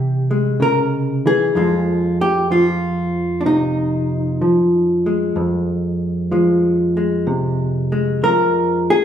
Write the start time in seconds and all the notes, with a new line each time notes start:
Already playing: C3 E3 G#3 G4
0.31 G#3
0.60 C#3 A#4
1.26 E3 G#4
1.55 F2 F3 G#3 F4
2.21 G4
2.51 F3 F4
3.41 D4
3.45 C3 D#4
4.41 F3
5.06 G#3
5.36 F2
6.31 F3 G#3
6.97 G#3
7.27 C3
7.92 G#3
8.23 F3 A#4
8.90 G#4